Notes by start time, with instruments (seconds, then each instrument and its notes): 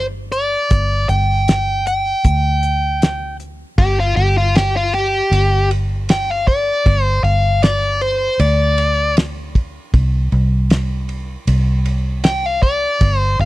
Already playing: fingered electric bass G1
0.32 overdriven electric guitar D5, closed hi-hat
0.70 fingered electric bass G1, kick, closed hi-hat
1.09 fingered electric bass G1, overdriven electric guitar G5, closed hi-hat
1.48 snare, closed hi-hat
1.87 overdriven electric guitar G5, closed hi-hat
2.25 fingered electric bass D2, kick, closed hi-hat
2.63 closed hi-hat
3.02 snare, closed hi-hat
3.40 closed hi-hat
3.78 fingered electric bass G1, overdriven electric guitar G4, kick, crash
4.00 overdriven electric guitar F4
4.16 fingered electric bass G1, overdriven electric guitar G4, ride
4.37 overdriven electric guitar F4
4.55 overdriven electric guitar G4, snare, ride
4.77 overdriven electric guitar F4
4.94 overdriven electric guitar G4, ride
5.31 fingered electric bass G1, ride
5.71 ride
6.09 overdriven electric guitar G5, snare, ride
6.31 overdriven electric guitar F5
6.47 overdriven electric guitar D5, kick, ride
6.86 fingered electric bass G1, kick, ride
7.03 overdriven electric guitar C5
7.23 fingered electric bass G1, overdriven electric guitar F5, ride
7.63 overdriven electric guitar D5, snare, ride
8.01 overdriven electric guitar C5, ride
8.39 fingered electric bass D2, overdriven electric guitar D5, ride
8.78 ride
9.17 snare, ride
9.55 kick, ride
9.94 fingered electric bass C2, kick, ride
10.32 fingered electric bass C2, ride
10.70 snare, ride
11.09 ride
11.47 fingered electric bass C2, ride
11.85 ride
12.24 overdriven electric guitar G5, snare, ride
12.46 overdriven electric guitar F5
12.63 overdriven electric guitar D5, kick, ride
13.01 fingered electric bass G1, kick, ride
13.19 overdriven electric guitar C5
13.39 fingered electric bass G1, overdriven electric guitar F5, ride